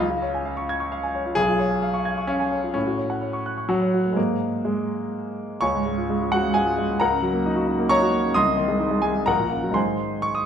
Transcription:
grand piano
0.00 C#2
0.10 F4
0.22 C#5
0.34 G#5
0.45 F5
0.57 C#6
0.69 G#6
0.80 C#6
0.92 F5
1.03 G#5
1.15 C#5
1.26 F4
1.35 B1 G#4
1.48 F4
1.59 C#5
1.71 G#5
1.82 F5
1.94 C#6
2.05 G#6
2.18 C#6
2.27 C#4 F5
2.40 G#5
2.52 C#5
2.64 F4
2.74 A2 C#4
2.86 F#4
2.98 C#5
3.10 F#5
3.22 C#5
3.33 C#6
3.46 F#6
3.58 C#6
3.69 F#3 F#5
3.82 C#5
3.94 F#4
4.06 A3
4.13 G#2 A#3 G#4 C5 D#5
4.65 G#3
5.61 C#2 C#5 G#5 C#6
5.74 G#2
5.86 G#3
5.98 F4
6.10 G#3
6.22 F4
6.32 G#3 F#4 F#5
6.43 G#2
6.54 G#3 G#4 F5 G#5
6.66 F4
6.78 G#3
6.89 G#2
7.00 C#2 A#4 F#5 A#5
7.12 C#3
7.22 F#3
7.33 A#3
7.46 D#4
7.56 F#4
7.67 D#4
7.79 A#3
7.89 D#4 C#5 A#5 C#6
8.02 F#4
8.13 A#3
8.24 C#3
8.34 C2 D#5 C6 D#6
8.46 C3
8.57 D#3
8.68 G#3
8.80 D#4
8.91 G#3
9.02 D#4 G#4 G#5
9.15 G#3
9.26 A#1 A#4 F#5 A#5
9.39 A#2
9.51 C#3
9.63 F#3
9.70 G#2 D#3 G#3 D#4
9.74 C5 G#5 C6
10.22 C#6
10.35 D#6

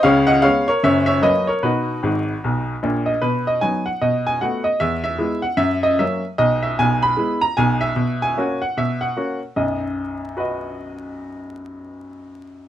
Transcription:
upright piano
0.03 C#2 C#3 C#5 F5
0.27 D#5 F#5
0.42 G#3 B3 C#4 C#5 F5
0.68 A#4 C#5
0.83 F#1 F#2 C#5 E5
1.06 C#5 E5
1.22 F#3 A#3 C#4 B4 D#5
1.47 A#4 C#5
1.63 B2 D#4 F#4 B4
2.03 G#1 G#2
2.44 B1 B2
2.83 A#1 A#2
3.06 D#5
3.22 B2 B4
3.47 D#5
3.61 F#3 B3 D#4 G#5
3.86 F#5
4.01 B2 D#5
4.27 G#5
4.41 A3 B3 F#4 F#5
4.64 D#5
4.80 E2 E5
5.04 E5
5.18 G#3 B3 E4
5.42 F#5
5.57 F#2 E5
5.83 D#5
5.99 F#3 A#3 C#4 E5
6.38 B1 B2 D#5
6.63 E5
6.79 B1 B2 G#5
7.03 B5
7.17 G#3 B3 E4
7.41 A#5
7.57 B1 B2 G#5
7.81 E5
7.96 B2
8.22 G#5
8.37 A#3 C#4 F#4
8.62 F#5
8.77 B2 E5
9.01 F#5
9.17 A#3 C#4 F#4
9.56 B1 F#2 D#5
10.37 F#4 B4 D#5

